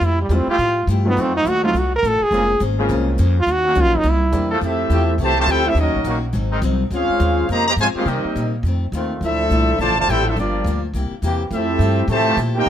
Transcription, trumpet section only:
4.64 C4 G4 A4 E5
5.23 G4 C5 E5 A5
5.40 G4 C5 E5 A5
5.51 E4 A4 C5 G5
5.69 C4 G4 A4 E5
5.79 C#4 F#4 A#4 D#5
6.94 C#4 G#4 C5 F5
7.51 G4 C5 D#5 A#5
7.67 G4 C5 D#5 A#5
7.80 F4 C5 C#5 G#5
7.97 C#4 G#4 C5 F5
8.08 C4 G4 A#4 D#5
9.25 D4 A4 C5 E5
9.81 F4 C5 D5 A5
9.99 F4 C5 D5 A5
10.10 E4 A4 C5 G5
10.28 D4 A4 C5 E5
10.40 A#3 F4 G4 D5
11.54 C4 G4 A4 E5
12.11 G4 C5 E5 A5
12.58 D#4 A#4 C5 G5

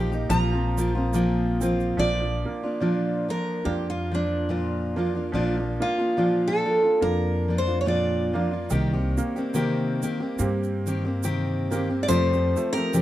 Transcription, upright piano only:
Already playing: F3 A#3 D#4 G4
0.29 F3
1.13 A#3
1.61 C4
1.97 F3
2.45 A#3
2.81 A#3 D4 F4
3.65 A#3 D4 F4
4.96 A#3 D4 F4
5.32 F3
5.80 A#3
6.17 A#3 D4 F4
7.01 A#3 D4 F4
8.34 A#3 D4 F4
8.70 D#3
9.18 A#3
9.55 A#3 C4 G4
10.39 A#3 C4 G4
11.71 A#3 C4 G4
12.08 F3
12.57 A3
12.94 C4 G4

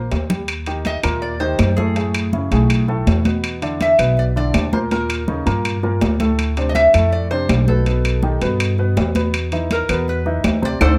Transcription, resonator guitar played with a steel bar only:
Already playing: C5
0.86 D#5
1.22 D5
1.40 C5
1.76 G#4
3.82 E5
4.19 D5
4.37 D5
4.73 C5
4.92 A#4
6.69 D#5
6.75 E5
7.12 D5
7.31 C5
7.68 A4
9.72 A#4
10.09 B4
10.65 D5
10.81 A4 C5 D5

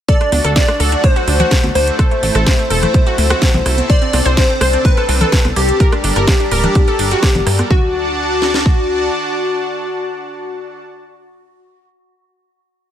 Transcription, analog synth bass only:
0.32 D2
0.45 D2
0.80 D2
1.27 D2
1.64 D2
1.75 D2
2.23 A1
2.35 A1
2.70 E1
3.18 D2
3.54 C2
3.66 C2
4.13 C2
4.26 C2
4.61 C2
5.09 C2
5.45 C2
5.56 C2
6.04 G1
6.16 G1
6.52 D1
6.99 G1
7.35 G1
7.47 G2
7.71 D2

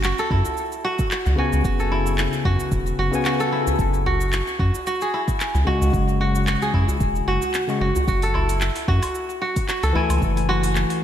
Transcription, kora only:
Already playing: C#4
0.04 F#4
0.19 A4
0.31 E4
0.85 F#4
1.38 F#4
1.65 F#4
1.80 A4
1.92 E4
2.45 F#4
2.99 F#4
3.26 F#4
3.40 A4
3.52 E4
4.06 F#4
4.60 F#4
4.87 F#4
5.02 G#4
5.14 E4
5.67 F#4
6.21 F#4
6.47 F#4
6.62 G#4
6.74 E4
7.28 F#4
7.81 F#4
8.08 F#4
8.23 A4
8.35 E4
8.88 F#4
9.42 F#4
9.69 F#4
9.83 A4
9.95 E4
10.49 F#4

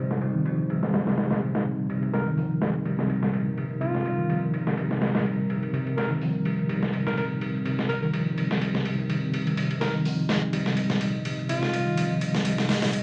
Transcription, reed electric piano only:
Already playing: A#2 C3 D#3 F3 G3
0.11 C3
0.34 D#3
0.46 F3
0.93 G3
1.07 C3
1.31 A#2
1.89 C3
2.02 C3
2.26 D#3
2.37 F3
2.85 G3
2.98 C3
3.22 A#2
3.81 C3
3.94 C3
4.18 D#3
4.29 F3
4.77 G3
4.90 C3
5.14 A#2
5.73 C3
5.86 C3
6.10 D#3
6.21 F3
6.69 G3
6.82 C3
7.06 A#2
7.65 C3
7.78 C3
8.02 D#3
8.14 F3
8.61 G3
8.74 C3
8.98 C3
9.09 D#3
9.46 D#3
9.57 C3
9.71 C3
9.94 D#3
10.05 F3
10.53 G3
10.67 C3
10.90 A#2
11.49 C3
11.62 C3
11.86 D#3
11.97 F3
12.45 G3
12.58 C3
12.82 A#2

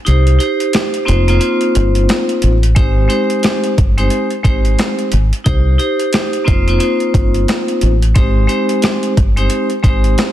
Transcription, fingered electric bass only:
0.07 C2
1.09 F1
1.76 G1
2.43 A1
2.77 G#1
3.78 G1
4.45 G#1
5.13 G#1
5.46 C2
6.48 F1
7.15 G1
7.83 A1
8.16 G#1
9.18 G1
9.84 G#1

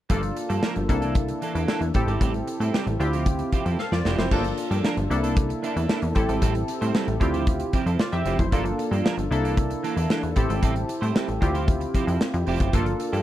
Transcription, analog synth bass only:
0.10 G1
0.50 G2
0.76 G1
0.89 C2
1.55 E2
1.81 E2
1.95 A1
2.07 G#1
2.21 A1
2.60 A2
2.87 A1
3.00 D2
3.66 F2
3.92 F2
4.05 F1
4.18 F#1
4.31 G1
4.71 G2
4.97 G1
5.10 C2
5.76 E2
6.02 E2
6.16 A1
6.29 G#1
6.42 A1
6.82 A2
7.08 A1
7.21 D2
7.86 F2
8.13 F2
8.26 F1
8.39 F#1
8.52 G1
8.91 G2
9.18 G1
9.31 C2
9.96 E2
10.23 E2
10.36 A1
10.50 G#1
10.63 A1
11.02 A2
11.29 A1
11.42 D2
12.07 F2
12.34 F2
12.47 F1
12.60 F#1
12.73 G1
13.13 G2

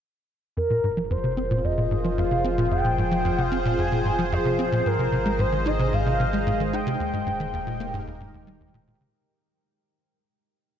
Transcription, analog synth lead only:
0.57 A#4
1.11 C5
1.64 D#5
2.18 F5
2.72 G5
3.44 F5
3.79 G#5
4.33 C5
4.87 A#4
5.40 C5
5.67 D#5
5.93 F5
6.74 G5

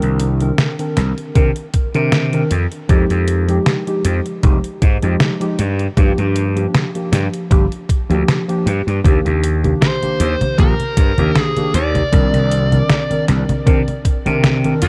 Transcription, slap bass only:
0.03 C2
0.97 C2
1.36 C3
1.95 C3
2.51 F2
2.89 F2
3.10 F2
4.05 F2
4.43 F1
4.82 G#2
5.03 F2
5.59 G2
5.97 G2
6.18 G2
7.12 G2
7.51 G1
8.10 D2
8.66 G2
8.87 G2
9.05 D#2
9.26 D#2
10.20 D#2
10.59 A#1
10.97 G2
11.18 D#2
11.74 D#2
12.13 C2
12.33 C2
13.29 C2
13.67 C3
14.26 C3
14.82 F2

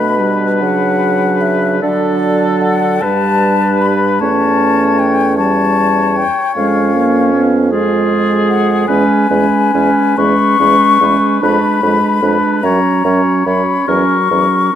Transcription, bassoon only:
Already playing: B2
0.62 C#3
1.83 D3
3.03 G2
4.21 E2
6.56 F2
8.89 E2
9.30 E2
9.74 E2
10.18 E2
10.60 E2
11.01 E2
11.42 F2
11.83 F2
12.22 F2
12.63 F#2
13.05 F#2
13.46 F#2
13.88 E2
14.31 E2

